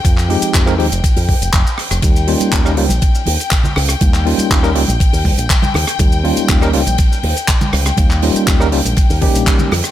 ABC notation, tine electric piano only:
X:1
M:4/4
L:1/16
Q:1/4=121
K:Ebmix
V:1 name="Tine electric piano"
z2 [F,A,CEG]3 [F,A,CEB] [F,A,CEG] z8 z | z2 [G,B,DEF]3 [G,B,DEB] [G,B,DEF] z8 z | z2 [G,B,DEF]3 [G,B,DEB] [G,B,DEF] z8 z | z2 [G,B,DEF]3 [G,B,DEB] [G,B,DEF] z8 z |
z2 [G,B,DEF]3 [G,B,DEB] [G,B,DEF] z3 [G,B,DEG]4 z2 |]